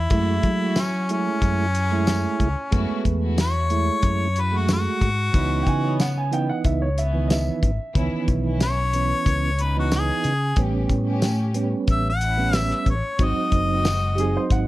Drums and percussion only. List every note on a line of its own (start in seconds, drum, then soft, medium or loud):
0.10 kick loud
0.10 closed hi-hat medium
0.43 kick medium
0.43 closed hi-hat medium
0.76 snare loud
0.76 closed hi-hat medium
0.76 tambourine loud
1.09 closed hi-hat medium
1.42 kick medium
1.42 closed hi-hat medium
1.75 closed hi-hat medium
2.07 snare loud
2.07 closed hi-hat medium
2.07 tambourine loud
2.40 kick medium
2.40 closed hi-hat medium
2.72 kick loud
2.72 closed hi-hat medium
3.05 kick medium
3.05 closed hi-hat medium
3.38 snare loud
3.38 closed hi-hat medium
3.38 tambourine loud
3.70 closed hi-hat medium
4.03 kick medium
4.03 closed hi-hat medium
4.36 closed hi-hat medium
4.69 snare loud
4.69 closed hi-hat medium
4.69 tambourine loud
5.01 kick medium
5.01 closed hi-hat medium
5.34 kick loud
5.34 closed hi-hat medium
5.67 kick medium
5.67 closed hi-hat medium
6.00 snare loud
6.00 closed hi-hat medium
6.00 tambourine loud
6.33 closed hi-hat medium
6.64 kick medium
6.64 closed hi-hat medium
6.98 closed hi-hat medium
7.30 snare loud
7.30 closed hi-hat medium
7.30 tambourine loud
7.63 kick medium
7.63 closed hi-hat medium
7.95 kick loud
7.95 closed hi-hat medium
8.28 kick medium
8.28 closed hi-hat medium
8.61 snare loud
8.61 closed hi-hat medium
8.61 tambourine loud
8.93 closed hi-hat medium
9.26 kick medium
9.26 closed hi-hat medium
9.59 closed hi-hat medium
9.92 snare loud
9.92 closed hi-hat medium
9.92 tambourine loud
10.24 closed hi-hat medium
10.56 kick loud
10.56 closed hi-hat medium
10.89 kick medium
10.89 closed hi-hat medium
11.22 snare loud
11.22 closed hi-hat medium
11.22 tambourine loud
11.54 closed hi-hat medium
11.88 kick medium
11.88 closed hi-hat medium
12.21 closed hi-hat medium
12.53 snare loud
12.53 closed hi-hat medium
12.53 tambourine loud
12.71 snare soft
12.86 kick medium
12.86 closed hi-hat medium
13.19 kick loud
13.19 closed hi-hat medium
13.52 kick medium
13.52 closed hi-hat medium
13.85 snare loud
13.85 closed hi-hat medium
13.85 tambourine loud
14.18 closed hi-hat medium
14.50 kick medium
14.50 closed hi-hat medium